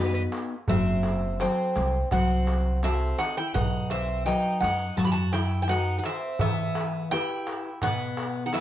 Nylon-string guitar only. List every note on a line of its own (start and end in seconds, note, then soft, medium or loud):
0.00 0.54 B3 medium
0.00 0.54 D#4 medium
0.00 0.55 F#4 medium
0.69 1.38 F#3 medium
1.39 1.97 F#3 soft
1.39 1.97 C4 soft
1.39 1.97 A4 medium
2.11 2.81 F#3 medium
2.83 3.40 C4 medium
2.83 3.41 F#4 soft
2.83 3.41 A4 medium
3.55 4.24 B4 medium
4.25 4.83 F#3 soft
4.25 4.83 B4 soft
4.25 4.83 D#5 medium
4.97 5.66 F#3 medium
5.68 6.26 F#4 medium
5.68 6.26 B4 medium
5.68 6.26 F#5 medium
6.41 7.09 E3 medium
7.12 7.68 E4 medium
7.12 7.69 G4 soft
7.12 7.69 B4 medium
7.83 8.52 B2 medium
8.53 8.61 E4 medium
8.53 8.61 G5 medium